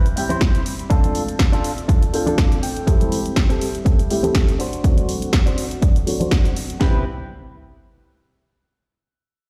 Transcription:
Already playing: grand piano G3 C4 E4 G4 B4
0.05 closed hi-hat, tambourine
0.16 grand piano G3 C4 E4 G4, muted clean electric guitar stroke, open hi-hat
0.29 clean electric guitar C4 E4 C5, closed hi-hat, tambourine, low conga
0.41 kick, snare, closed hi-hat, tambourine
0.55 closed hi-hat, tambourine
0.66 open hi-hat
0.79 closed hi-hat, tambourine
0.90 grand piano A3 C4 D4 F4 A4, clean electric guitar D4 F4 A4, kick, closed hi-hat, tambourine
1.04 closed hi-hat, tambourine, high conga, low conga
1.15 open hi-hat, high conga
1.28 closed hi-hat, tambourine
1.39 kick, snare, closed hi-hat
1.52 clean electric guitar D4 F4 A4, closed hi-hat, tambourine
1.64 open hi-hat
1.78 closed hi-hat, tambourine
1.88 clean electric guitar D4 F4 A4, kick, closed hi-hat
2.03 closed hi-hat
2.13 grand piano A3 C4 D4 F4 A4, muted clean electric guitar stroke, open hi-hat
2.26 clean electric guitar D4 F4 A4, closed hi-hat, tambourine, low conga
2.38 kick, snare, closed hi-hat, tambourine
2.52 closed hi-hat, tambourine
2.63 clean electric guitar G5, open hi-hat
2.76 closed hi-hat, tambourine
2.87 grand piano G3 A3 C4 E4 G4, clean electric guitar C4 G4 A4, kick, closed hi-hat
3.01 closed hi-hat, tambourine, high conga, low conga
3.12 open hi-hat, high conga
3.26 closed hi-hat, tambourine
3.36 kick, snare, closed hi-hat, tambourine
3.49 clean electric guitar C4 G4 A4, closed hi-hat, tambourine
3.61 open hi-hat
3.74 closed hi-hat, tambourine
3.85 clean electric guitar C4 G4 A4, kick, closed hi-hat
3.99 closed hi-hat
4.10 grand piano G3 A3 C4 E4 G4, muted clean electric guitar stroke, open hi-hat
4.23 clean electric guitar C4 G4 A4, closed hi-hat, tambourine, low conga
4.35 kick, snare, closed hi-hat
4.48 closed hi-hat, tambourine
4.59 clean electric guitar D4 F#4 C5, open hi-hat
4.72 closed hi-hat, tambourine
4.83 grand piano F#3 A3 C4 D4 F#4, kick, closed hi-hat
4.97 closed hi-hat, tambourine, high conga, low conga
5.09 open hi-hat, high conga
5.22 closed hi-hat, tambourine
5.33 kick, snare, closed hi-hat
5.46 clean electric guitar D4 F#4 C5, closed hi-hat
5.58 open hi-hat
5.71 closed hi-hat, tambourine
5.82 clean electric guitar D4 F#4 D5, kick, closed hi-hat
5.96 closed hi-hat
6.06 grand piano F#3 A3 C4 D4 F#4, muted clean electric guitar stroke, open hi-hat
6.20 clean electric guitar D4 F#4 C5, closed hi-hat, tambourine, low conga
6.31 kick, snare, closed hi-hat, tambourine
6.45 closed hi-hat
6.56 open hi-hat
6.70 closed hi-hat, tambourine
6.79 analog synth bass C2, grand piano G3 B3 C4 E4 G4, clean electric guitar C4 E4 B4, kick, snare

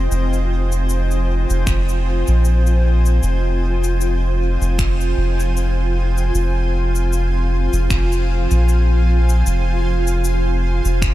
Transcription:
Already playing: synth texture C4 C5, ambient pad F4 C5 D#5 G5 G#5
0.11 sub bass F1, cabasa
0.33 cabasa
0.72 cabasa
0.89 cabasa
1.11 cabasa
1.50 sub bass F1, cabasa
1.67 sub bass F1, finger snap, kick, cabasa
1.89 cabasa
2.27 sub bass A#1, cabasa
2.45 cabasa
2.67 cabasa
3.06 cabasa
3.22 sub bass F1, synth texture F4, cabasa
3.84 cabasa
4.01 cabasa
4.61 sub bass F1, cabasa
4.79 finger snap, kick, cabasa
5.01 cabasa
5.17 sub bass F1
5.35 ambient pad F5
5.40 cabasa
5.57 cabasa
6.18 cabasa
6.34 sub bass F1, cabasa
6.95 cabasa
7.13 cabasa
7.73 sub bass F1, cabasa
7.90 sub bass F1, finger snap, kick, cabasa
8.12 cabasa
8.51 sub bass A#1, cabasa
8.69 cabasa
9.29 cabasa
9.46 sub bass F1, cabasa
10.07 cabasa
10.24 cabasa
10.85 sub bass F1, cabasa
11.02 finger snap, kick, cabasa

